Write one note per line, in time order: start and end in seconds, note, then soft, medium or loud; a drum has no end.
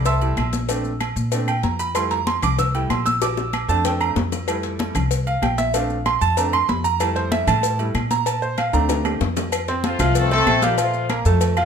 0.00 0.34 C2 loud
0.00 0.20 G3 medium
0.00 0.20 A3 medium
0.00 0.21 E4 medium
0.05 0.50 E5 medium
0.05 0.50 A5 medium
0.05 0.50 C6 medium
0.05 0.50 E6 loud
0.05 cowbell loud
0.05 high conga soft
0.05 maracas medium
0.21 0.35 G3 soft
0.21 0.36 A3 soft
0.21 0.36 E4 medium
0.21 high conga soft
0.21 low agogo medium
0.21 maracas soft
0.37 1.10 A#1 medium
0.37 cowbell medium
0.37 high conga medium
0.37 low agogo loud
0.37 claves medium
0.37 maracas soft
0.53 cowbell medium
0.53 high conga medium
0.53 maracas medium
0.68 0.90 A3 medium
0.68 0.90 C4 soft
0.68 0.90 D4 medium
0.68 cowbell loud
0.68 low agogo medium
0.68 maracas medium
0.85 high conga soft
0.85 maracas soft
1.00 cowbell medium
1.00 high conga medium
1.00 low agogo loud
1.00 claves medium
1.00 maracas soft
1.16 1.60 A#2 loud
1.16 maracas medium
1.32 1.46 A3 soft
1.32 1.46 C4 soft
1.32 1.47 D4 medium
1.32 cowbell loud
1.32 high conga soft
1.32 low agogo medium
1.32 maracas medium
1.48 1.63 G5 medium
1.48 high conga soft
1.48 low agogo loud
1.48 claves medium
1.48 maracas soft
1.63 2.37 F2 loud
1.63 1.79 A#5 medium
1.63 cowbell medium
1.63 high conga medium
1.63 maracas soft
1.79 1.95 B5 loud
1.79 high conga soft
1.79 low agogo medium
1.79 maracas medium
1.95 2.16 G3 medium
1.95 2.16 A3 medium
1.95 2.17 E4 medium
1.95 2.11 C6 loud
1.95 cowbell loud
1.95 high conga soft
1.95 low agogo loud
1.95 claves medium
1.95 maracas medium
2.11 2.26 A#5 loud
2.11 cowbell medium
2.11 high conga soft
2.11 maracas soft
2.27 2.42 C6 loud
2.27 cowbell medium
2.27 high conga loud
2.27 low agogo medium
2.27 maracas soft
2.42 2.87 C2 loud
2.42 2.58 D6 loud
2.42 cowbell medium
2.42 high conga soft
2.42 low conga medium
2.42 low agogo loud
2.42 claves medium
2.42 maracas medium
2.59 2.74 E6 loud
2.59 cowbell loud
2.59 high conga soft
2.59 low conga medium
2.59 maracas medium
2.74 2.88 G3 soft
2.74 2.89 A3 soft
2.74 2.89 E4 medium
2.74 2.90 G5 medium
2.74 high conga soft
2.74 low agogo medium
2.74 maracas soft
2.90 3.63 A#1 medium
2.90 3.05 C6 medium
2.90 cowbell medium
2.90 high conga medium
2.90 low timbale medium
2.90 low agogo loud
2.90 claves medium
2.90 maracas soft
3.06 3.21 E6 loud
3.06 cowbell medium
3.06 high conga medium
3.06 maracas medium
3.22 3.66 D6 medium
3.22 cowbell loud
3.22 high bongo loud
3.22 low agogo medium
3.22 maracas medium
3.37 high bongo medium
3.37 high conga soft
3.37 maracas soft
3.53 cowbell medium
3.53 high conga medium
3.53 low agogo loud
3.53 claves medium
3.53 maracas soft
3.68 4.13 F2 loud
3.68 4.14 A3 medium
3.68 4.14 C4 medium
3.68 4.14 D4 medium
3.68 3.84 A5 loud
3.68 maracas medium
3.85 4.00 G5 medium
3.85 cowbell loud
3.85 low bongo medium
3.85 high conga soft
3.85 low agogo medium
3.85 maracas medium
4.01 4.10 A#5 loud
4.01 high conga soft
4.01 low agogo loud
4.01 claves medium
4.01 maracas soft
4.16 4.89 F2 loud
4.16 cowbell medium
4.16 low bongo loud
4.16 high conga medium
4.16 low timbale medium
4.16 maracas soft
4.32 low bongo medium
4.32 high conga soft
4.32 low agogo medium
4.32 maracas medium
4.47 4.93 G3 medium
4.47 4.93 A3 soft
4.47 4.93 E4 medium
4.47 cowbell loud
4.47 high conga soft
4.47 low agogo loud
4.47 claves medium
4.47 maracas medium
4.63 cowbell medium
4.63 high conga soft
4.63 maracas soft
4.79 cowbell medium
4.79 high conga loud
4.79 low agogo medium
4.79 maracas soft
4.95 5.39 C2 loud
4.95 cowbell medium
4.95 high conga soft
4.95 low conga medium
4.95 low agogo loud
4.95 claves medium
4.95 maracas medium
5.11 cowbell loud
5.11 high conga soft
5.11 maracas medium
5.27 5.42 F5 loud
5.27 high conga soft
5.27 low agogo medium
5.27 maracas soft
5.42 6.16 A#1 medium
5.42 5.58 G5 medium
5.42 cowbell medium
5.42 high conga medium
5.42 low timbale medium
5.42 low agogo loud
5.42 claves medium
5.42 maracas soft
5.58 5.74 E5 loud
5.58 cowbell medium
5.58 high conga medium
5.58 maracas medium
5.74 5.95 A3 medium
5.74 5.95 C4 soft
5.74 5.96 D4 medium
5.74 6.04 F5 medium
5.74 cowbell loud
5.74 high conga soft
5.74 low agogo medium
5.74 maracas loud
5.90 high conga soft
5.90 maracas soft
6.06 6.21 C6 loud
6.06 cowbell medium
6.06 high conga medium
6.06 low agogo loud
6.06 claves medium
6.06 maracas soft
6.21 6.65 F2 loud
6.21 6.37 A5 loud
6.21 maracas medium
6.37 6.52 A3 medium
6.37 6.52 C4 soft
6.37 6.52 D4 medium
6.37 6.53 A#5 medium
6.37 cowbell loud
6.37 high conga soft
6.37 low agogo medium
6.37 maracas medium
6.53 6.69 C6 loud
6.53 high conga soft
6.53 low agogo loud
6.53 claves medium
6.53 maracas soft
6.69 7.42 F2 medium
6.69 6.84 B5 medium
6.69 cowbell medium
6.69 high conga medium
6.69 low timbale medium
6.69 maracas soft
6.84 7.00 A#5 loud
6.84 low agogo medium
6.84 maracas medium
7.00 7.77 G3 medium
7.00 7.78 A3 medium
7.00 7.78 E4 medium
7.00 7.16 A5 medium
7.00 cowbell loud
7.00 high conga soft
7.00 low agogo loud
7.00 claves medium
7.00 maracas medium
7.16 7.31 C5 medium
7.16 cowbell medium
7.16 high conga soft
7.16 maracas soft
7.32 7.47 E5 medium
7.32 cowbell medium
7.32 high conga loud
7.32 low agogo medium
7.32 maracas soft
7.47 7.91 A2 loud
7.47 7.77 A5 loud
7.47 cowbell medium
7.47 high conga soft
7.47 low conga loud
7.47 low agogo loud
7.47 claves medium
7.47 maracas medium
7.63 cowbell loud
7.63 maracas loud
7.79 7.93 G3 medium
7.79 7.93 A3 soft
7.79 7.94 E4 medium
7.79 high conga soft
7.79 low agogo medium
7.79 maracas soft
7.95 8.68 A#2 medium
7.95 cowbell medium
7.95 high conga medium
7.95 low agogo loud
7.95 claves medium
7.95 maracas soft
8.11 8.26 A#5 loud
8.11 cowbell medium
8.11 high conga medium
8.11 maracas medium
8.26 8.42 A5 medium
8.26 cowbell loud
8.26 low agogo medium
8.26 maracas medium
8.42 8.58 C5 medium
8.42 high conga soft
8.42 maracas soft
8.58 8.73 F5 loud
8.58 cowbell medium
8.58 high conga medium
8.58 low agogo loud
8.58 claves medium
8.58 maracas soft
8.73 9.17 D2 loud
8.73 9.18 A3 medium
8.73 9.19 C4 medium
8.73 9.19 D4 medium
8.73 9.03 A#5 loud
8.73 high timbale medium
8.73 maracas medium
8.89 cowbell loud
8.89 high bongo medium
8.89 high conga soft
8.89 high timbale medium
8.89 low agogo medium
8.89 maracas medium
9.05 high conga soft
9.05 low timbale loud
9.05 low agogo loud
9.05 claves medium
9.05 maracas soft
9.20 9.94 F2 loud
9.20 cowbell medium
9.20 low bongo loud
9.20 high conga medium
9.20 maracas soft
9.37 low bongo loud
9.37 low timbale medium
9.37 low agogo medium
9.37 maracas medium
9.52 cowbell loud
9.52 high conga soft
9.52 low agogo loud
9.52 claves medium
9.52 maracas medium
9.68 9.94 C4 medium
9.68 9.94 C5 medium
9.68 9.94 C6 medium
9.68 cowbell medium
9.68 high conga soft
9.68 maracas soft
9.84 10.14 F3 medium
9.84 10.14 A3 medium
9.84 10.14 F4 loud
9.84 cowbell medium
9.84 high conga loud
9.84 low agogo medium
9.84 maracas soft
9.99 10.43 C2 loud
9.99 10.25 F3 loud
9.99 10.25 F4 loud
9.99 10.26 F5 loud
9.99 cowbell medium
9.99 high conga soft
9.99 low conga loud
9.99 low agogo loud
9.99 claves medium
9.99 maracas medium
10.15 10.31 A3 loud
10.15 10.31 C4 medium
10.15 10.31 A4 loud
10.15 cowbell loud
10.15 high conga soft
10.15 maracas loud
10.31 10.61 A3 loud
10.31 10.57 C4 medium
10.31 10.61 C4 medium
10.31 10.61 A4 loud
10.31 10.57 C5 medium
10.31 10.57 C6 medium
10.31 high conga soft
10.31 low agogo medium
10.31 maracas soft
10.46 11.20 A#1 medium
10.46 cowbell medium
10.46 high conga medium
10.46 low timbale medium
10.46 low agogo loud
10.46 claves medium
10.46 maracas soft
10.62 10.75 F3 medium
10.62 10.79 G3 medium
10.62 10.79 A#3 medium
10.62 10.75 F4 loud
10.62 10.79 G4 loud
10.62 10.76 F5 loud
10.62 cowbell medium
10.62 high conga medium
10.62 maracas medium
10.78 11.04 F3 medium
10.78 11.08 F3 medium
10.78 11.08 A3 medium
10.78 11.04 F4 medium
10.78 11.08 F4 medium
10.78 11.04 F5 medium
10.78 cowbell loud
10.78 high conga soft
10.78 low agogo loud
10.78 maracas medium
10.94 high conga soft
10.94 maracas soft
11.09 11.22 A#3 medium
11.09 11.23 A#4 medium
11.09 11.23 A#5 medium
11.09 cowbell medium
11.09 high conga medium
11.09 low agogo loud
11.09 claves medium
11.09 maracas soft
11.25 11.65 F2 loud
11.25 11.51 A3 medium
11.25 11.51 A4 medium
11.25 11.51 A5 medium
11.25 maracas medium
11.41 cowbell loud
11.41 high conga soft
11.41 low agogo medium
11.41 maracas medium
11.57 11.65 F3 medium
11.57 11.65 F4 loud
11.57 11.65 F5 loud
11.57 high conga soft
11.57 low agogo loud
11.57 claves medium
11.57 maracas soft